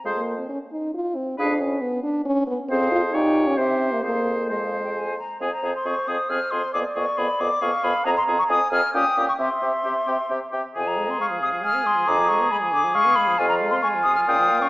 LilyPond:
<<
  \new Staff \with { instrumentName = "Flute" } { \time 3/4 \key f \minor \tempo 4 = 135 f''8 r2 r8 | f''8 r2 r8 | f''4 g''4 e''4 | f''4 ees''16 f''8 g''16 aes''8 bes''8 |
aes''16 bes''8 c'''16 des'''8 ees'''8 f'''8 c'''8 | d'''8 des'''8 ces'''8 d'''8 des'''8 ces'''8 | bes''16 c'''8 des'''16 ees'''8 f'''8 ees'''8. des'''16 | c'''2 r4 |
aes''16 bes''8 c'''16 des'''8 ees'''8 f'''8 c'''8 | d'''8 des'''8 ces'''8 d'''8 des'''8 ces'''8 | aes''16 bes''8 c'''16 des'''8 ees'''16 f'''16 ees'''8. des'''16 | }
  \new Staff \with { instrumentName = "Clarinet" } { \time 3/4 \key f \minor aes'8 r2 r8 | aes'8 r2 r8 | aes'4 g'4 g'4 | aes'4 aes'4. r8 |
c''2. | d''2 f''4 | bes''4 aes''4 g''4 | e''2~ e''8 r8 |
r4 f''4 aes''4 | bes''4 aes''4 f''4~ | f''4 aes''4 g''4 | }
  \new Staff \with { instrumentName = "Oboe" } { \time 3/4 \key f \minor c''8 r2 r8 | ces''8 r2 r8 | c''4 des''4 c''4 | c''4 c''4. r8 |
aes'8 aes'8 aes'8 aes'8 aes'8 aes'8 | aes'8 aes'8 aes'8 aes'8 aes'8 aes'8 | aes'8 aes'8 aes'8 aes'8 g'8 g'8 | g'8 g'8 g'8 g'8 g'8 g'8 |
aes'2.~ | aes'2. | f'2. | }
  \new Staff \with { instrumentName = "French horn" } { \time 3/4 \key f \minor aes16 bes8 c'16 des'8 ees'8 f'8 c'8 | d'8 des'8 ces'8 d'8 des'8 ces'8 | c'8 f'8 ees'8. des'16 c'8. bes16 | bes4 aes4 r4 |
c'8 c'8 c'8 c'8 c'8 c'8 | ces'8 ces'8 ces'8 ces'8 ces'8 ces'8 | c'8 c'8 c'8 c'8 des'8 des'8 | c'8 c'8 c'8 c'8 c'8 c'8 |
c16 f16 aes16 c'16 aes16 f16 c16 f16 aes16 c'16 aes16 f16 | d16 f16 aes16 ces'16 aes16 f16 d16 f16 aes16 ces'16 aes16 f16 | c16 f16 aes16 c'16 aes16 f16 c16 f16 des16 f16 bes16 des'16 | }
  \new Staff \with { instrumentName = "Bassoon" } { \clef bass \time 3/4 \key f \minor f,4 r2 | f,4 r2 | f,4 bes,4 c4 | f,2~ f,8 r8 |
f,8 f,8 f,8 f,8 f,8 f,8 | f,8 f,8 f,8 f,8 f,8 f,8 | f,8 f,8 f,8 f,8 bes,8 bes,8 | c8 c8 c8 c8 c8 c8 |
f,4 r2 | f,4 r2 | f,4 r4 bes,4 | }
>>